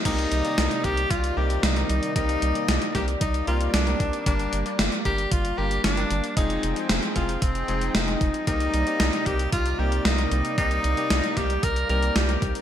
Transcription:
<<
  \new Staff \with { instrumentName = "Tenor saxophone" } { \time 4/4 \key c \minor \tempo 4 = 114 ees'4. g'8 f'8 g'8 ees'4 | ees'4. g'8 ees'8 f'8 d'4 | d'4 r8 g'8 f'8 g'8 d'4 | ees'4 r8 f'8 c'4 ees'4 |
ees'4. g'8 f'8 g'8 ees'4 | ees'4. g'8 bes'8 bes'8 g'8. r16 | }
  \new Staff \with { instrumentName = "Electric grand piano" } { \time 4/4 \key c \minor <bes c' ees' g' bes'>8. <bes c' ees' g' d''>16 r8 <bes c' ees' g' bes'>16 r8. <bes c' ees' g' bes'>8 r16 <bes c' ees' g' bes'>8. | <bes c' ees' g' bes'>8. <bes c' ees' g' d''>16 r8 <bes c' ees' g' bes'>16 r8. <bes c' ees' g' bes'>8 r16 <ees bes c' g' bes'>8. | <g bes d' g' bes'>8. <g bes d' g' d''>16 r8 <g bes d' g' bes'>16 r8. <g bes d' g' bes'>8 r16 <g bes d' g' bes'>8. | <aes c' ees' f' aes'>8. <aes c' ees' f' c''>16 r8 <aes c' ees' f' aes'>16 r8. <aes c' ees' f' aes'>8 r16 <aes c' ees' f' aes'>8. |
<bes c' ees' g' bes'>8. <bes c' ees' g' d''>16 r8 <bes c' ees' g' bes'>16 r8. <bes c' ees' g' bes'>8 r16 <bes c' ees' g' bes'>8. | <bes c' ees' g' bes'>8. <bes c' ees' g' d''>16 r8 <bes c' ees' g' bes'>16 r8. <bes c' ees' g' bes'>8 r16 <bes c' ees' g' bes'>8. | }
  \new Staff \with { instrumentName = "Analog synth pad" } { \time 4/4 \key c \minor << { <g bes d''>1~ | <g bes d''>1~ | <g bes d''>1 | <c' ees' g''>1 |
<g bes d''>1~ | <g bes d''>1 | } \\ { <c ees>1~ | <c ees>1 | r1 | <f aes'>1 |
c1~ | c1 | } >> }
  \new Staff \with { instrumentName = "Analog synth bass" } { \clef bass \time 4/4 \key c \minor c,8 c,8 c,8 c,8 c,8 c,8 c,8 c,8 | c,8 c,8 c,8 c,8 c,8 c,8 c,8 c,8 | g,,8 g,,8 g,,8 g,,8 g,,8 g,,8 g,,8 g,,8 | f,,8 f,,8 f,,8 f,,8 f,,8 f,,8 f,,8 f,,8 |
c,8 c,8 c,8 c,8 c,8 c,8 c,8 c,8 | c,8 c,8 c,8 c,8 c,8 c,8 c,8 c,8 | }
  \new DrumStaff \with { instrumentName = "Drums" } \drummode { \time 4/4 <cymc hh bd>16 hh16 hh16 hh16 <hh sn>16 hh16 <hh bd>16 hh16 <hh bd>16 hh8 hh16 <hh sn>16 hh16 hh16 hh16 | <hh bd>16 hh16 hh16 hh16 <hh sn>16 hh16 <hh bd sn>16 hh16 <hh bd>16 hh16 hh16 hh16 <hh sn>16 hh16 <hh bd>16 hh16 | <hh bd>16 hh16 hh16 hh16 <hh sn>16 hh16 <hh bd>16 hh16 <hh bd>16 hh8 hh16 <hh sn>16 hh16 hh16 hh16 | <hh bd>16 hh16 hh16 hh16 <hh sn>16 hh16 <hh bd sn>16 hh16 <hh bd>16 hh16 hh16 hh16 <hh sn>16 hh16 <hh bd>16 hh16 |
<hh bd>16 hh16 hh16 hh16 <hh sn>16 hh16 <hh bd>16 hh16 <hh bd>16 hh8 hh16 <hh sn>16 hh16 hh16 hh16 | <hh bd>16 hh16 hh16 hh16 <hh sn>16 hh16 <hh bd sn>16 hh16 <hh bd>16 hh16 hh16 hh16 <hh sn>16 hh16 <hh bd>16 hh16 | }
>>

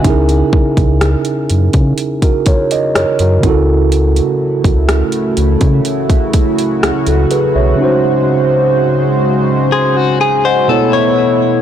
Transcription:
<<
  \new Staff \with { instrumentName = "Tine electric piano" } { \time 4/4 \key b \mixolydian \tempo 4 = 62 << { <e'' gis''>16 r2 <fis' ais'>16 <ais' cis''>16 dis''16 <ais' cis''>16 <fis' ais'>8 r16 | r2. r16 <fis' a'>16 <gis' b'>16 <cis'' e''>16~ | <cis'' e''>16 r4. r16 <gis'' bis''>8 gis''16 <dis'' fis''>8 r8. | } \\ { <cis cis' dis' e' gis' ais'>2.~ <cis cis' dis' e' gis' ais'>8 <cis cis' e' fis' a'>8~ | <cis cis' e' fis' a'>2.~ <cis cis' e' fis' a'>8 r8 | <cis cis' dis' fis' bis'>2. <b, b e' a' cis''>4 | } >> }
  \new Staff \with { instrumentName = "Clean electric guitar" } { \time 4/4 \key b \mixolydian r1 | r1 | r2 gis'16 fis'16 gis'16 bis'16 a'16 cis''8. | }
  \new Staff \with { instrumentName = "Analog synth pad" } { \time 4/4 \key b \mixolydian << { r1 | fis'1~ | fis'2. e'4 | } \\ { r1 | <cis a e'>1 | <cis gis bis'>2. <a b>4 | } >> }
  \new Staff \with { instrumentName = "Sub bass" } { \clef bass \time 4/4 \key b \mixolydian cis,8 r16 cis,8 r16 fis,16 cis16 r4 fis,16 fis,16 cis,8~ | cis,8 r16 cis,8 r16 cis,16 cis16 r4 cis,16 cis,16 r16 b,,16 | r1 | }
  \new DrumStaff \with { instrumentName = "Drums" } \drummode { \time 4/4 <hh bd>16 hh16 bd16 <hh bd>16 <hh ss>16 hh16 hh16 <hh bd>16 hh16 <hh bd>16 <hh bd>16 hh16 <hh ss>16 hh16 <hh bd>8 | hh16 hh8 <hh bd>16 <hh ss>16 hh16 hh16 <hh bd>16 hh16 <hh bd>16 <hh bd>16 hh16 <hh ss>16 hh16 hh8 | r4 r4 r4 r4 | }
>>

